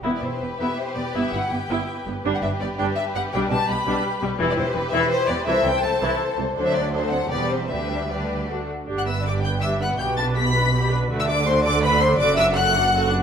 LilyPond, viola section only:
\new Staff \with { instrumentName = "Viola section" } { \time 3/4 \key e \minor \tempo 4 = 164 << { e'8 e'8 b8 e'8 r8 b8 | e'8 e'8 b8 e'8 r8 b8 | d'8 d'8 b8 d'8 r8 b8 | d'8 d'8 b8 d'8 r8 b8 |
\key g \major e'8 e'8 b8 e'8 r8 b8 | e'8 e'8 c'8 e'8 r8 c'8 | d'4 d'8 c'8 b8 c'8 | d'4 d'4 d'8 r8 |
g'8 b'8 g'8 b'8 g'8 b'8 | g'8 b'8 g'8 b'8 g'8 b'8 | fis'8 a'8 fis'8 a'8 fis'8 a'8 | a'8 fis'8 a'8 fis'8 a'8 fis'8 | } \\ { b8 b8 b8 b8 r8 b8 | b8 b8 b8 b8 r8 b8 | g8 g8 g8 g8 r8 g8 | g8 g8 g8 g8 r8 g8 |
e8 e8 e8 e8 r8 e8 | e8 e8 e8 e8 r8 e8 | fis4 fis4 g4 | g4 g4 a8 r8 |
d'8 b8 d'8 b8 d'8 b8 | b8 d'8 b8 d'8 b8 d'8 | a8 d'8 a8 d'8 a8 d'8 | fis'8 d'8 fis'8 d'8 fis'8 d'8 | } >> }